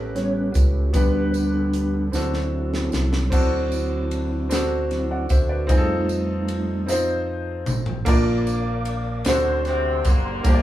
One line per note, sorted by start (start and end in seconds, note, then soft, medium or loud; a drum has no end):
0.00 0.50 A1 loud
0.00 0.96 A2 medium
0.00 0.91 A3 medium
0.00 0.92 B3 medium
0.00 0.93 B3 medium
0.00 0.92 C#4 medium
0.00 0.97 C#4 medium
0.00 0.95 G4 medium
0.00 2.09 G4 medium
0.00 0.16 A4 medium
0.00 0.96 A4 medium
0.00 0.97 A#4 medium
0.00 0.90 B4 medium
0.15 0.51 G3 soft
0.15 0.51 B3 soft
0.15 0.51 C#4 soft
0.15 0.34 C#5 medium
0.15 snare soft
0.15 closed hi-hat medium
0.35 0.55 B4 medium
0.54 0.91 C#2 medium
0.54 0.90 A4 medium
0.54 kick medium
0.54 closed hi-hat medium
0.54 tambourine medium
0.89 2.04 B3 medium
0.89 3.13 D4 medium
0.89 0.94 F#4 medium
0.93 2.09 D2 loud
0.93 2.09 D3 medium
0.93 2.09 G3 soft
0.93 2.12 G3 medium
0.93 2.12 B3 medium
0.93 2.09 B3 soft
0.93 2.05 D4 medium
0.93 2.09 D4 medium
0.93 2.05 G4 medium
0.93 1.15 G4 medium
0.93 2.06 B4 medium
0.93 kick loud
0.93 closed hi-hat medium
0.93 tambourine medium
1.13 1.32 B4 medium
1.33 1.54 B4 medium
1.33 closed hi-hat soft
1.33 tambourine medium
1.54 1.74 A4 medium
1.73 1.94 G4 medium
1.73 closed hi-hat medium
1.93 3.28 A4 medium
2.12 2.88 D2 medium
2.12 3.28 D3 medium
2.12 3.28 F#3 medium
2.12 3.13 A3 medium
2.12 3.23 C4 medium
2.12 3.13 C4 medium
2.12 3.28 C4 medium
2.12 3.24 D4 medium
2.12 3.28 E4 medium
2.12 3.13 F#4 medium
2.12 3.25 F#4 medium
2.12 3.25 A4 medium
2.12 snare medium
2.12 tambourine medium
2.34 snare medium
2.74 snare medium
2.92 3.29 C2 medium
2.92 snare medium
2.92 tambourine medium
3.13 snare medium
3.30 5.26 D2 medium
3.30 4.47 D3 medium
3.30 4.47 F#3 soft
3.30 8.03 A3 medium
3.30 4.42 C4 medium
3.30 8.03 C4 medium
3.30 4.47 C4 soft
3.30 5.67 D4 medium
3.30 4.43 D4 medium
3.30 4.47 E4 medium
3.30 5.67 F#4 medium
3.30 4.43 F#4 medium
3.30 4.44 A4 medium
3.30 kick loud
3.30 crash medium
3.30 tambourine medium
3.72 ride soft
3.72 tambourine medium
4.11 ride medium
4.49 5.61 C4 medium
4.49 5.61 D4 medium
4.49 5.62 F#4 medium
4.49 5.63 A4 medium
4.49 snare loud
4.49 ride medium
4.49 tambourine medium
4.90 5.26 F#3 medium
4.90 5.26 C4 soft
4.90 5.26 E4 medium
4.90 snare soft
4.90 ride soft
5.11 5.30 D5 medium
5.11 5.30 F#5 medium
5.29 5.69 D2 medium
5.29 5.49 C5 medium
5.29 5.49 E5 medium
5.29 kick medium
5.29 ride medium
5.29 tambourine medium
5.49 5.88 B4 medium
5.49 5.87 D5 medium
5.67 7.64 F2 loud
5.67 6.85 G3 medium
5.67 6.85 A3 soft
5.67 6.79 C4 medium
5.67 6.80 D#4 medium
5.67 8.04 D#4 medium
5.67 8.05 F4 medium
5.67 6.81 F4 medium
5.67 kick loud
5.67 ride medium
5.67 tambourine medium
5.71 6.85 D#4 medium
5.71 5.77 G#4 medium
5.78 6.84 A4 loud
6.09 ride soft
6.09 tambourine medium
6.48 ride medium
6.86 7.98 C4 medium
6.86 7.99 D#4 medium
6.86 8.00 F4 medium
6.86 snare medium
6.86 tambourine medium
6.91 8.00 C5 medium
7.66 8.04 A1 medium
7.66 mid tom loud
7.66 tambourine medium
7.86 floor tom medium
8.05 9.22 A#1 loud
8.05 9.22 A#2 medium
8.05 9.17 A#3 loud
8.05 9.18 D4 medium
8.05 9.18 F4 medium
8.05 9.25 A#4 medium
8.05 9.18 A#4 medium
8.05 9.25 D5 medium
8.05 9.19 D5 loud
8.05 9.25 F5 medium
8.05 9.25 D6 medium
8.05 kick loud
8.05 crash medium
8.05 tambourine medium
8.47 ride soft
8.47 tambourine medium
8.85 ride medium
9.25 10.01 D2 medium
9.25 10.41 D3 medium
9.25 10.37 C4 medium
9.25 10.37 D4 medium
9.25 10.37 F#4 medium
9.25 10.44 A4 medium
9.25 10.38 A4 medium
9.25 10.38 C5 medium
9.25 10.44 D5 medium
9.25 10.44 F#5 medium
9.25 10.44 C6 medium
9.25 snare loud
9.25 ride medium
9.25 tambourine medium
9.65 10.03 C3 medium
9.65 10.03 C4 loud
9.65 snare soft
9.65 ride soft
10.05 10.42 F#1 medium
10.05 10.62 D3 medium
10.05 10.62 G3 medium
10.05 10.62 A#3 loud
10.05 kick loud
10.05 ride medium
10.05 tambourine medium
10.43 10.62 G1 loud
10.43 10.62 G2 medium
10.43 10.62 A#3 medium
10.43 10.62 D4 medium
10.43 10.62 G4 medium
10.43 10.62 A#4 medium
10.43 10.62 D5 medium
10.43 10.62 G5 medium
10.43 10.62 D6 medium
10.43 kick loud
10.43 ride medium
10.43 tambourine medium
10.48 10.53 C5 medium
10.55 10.62 D5 medium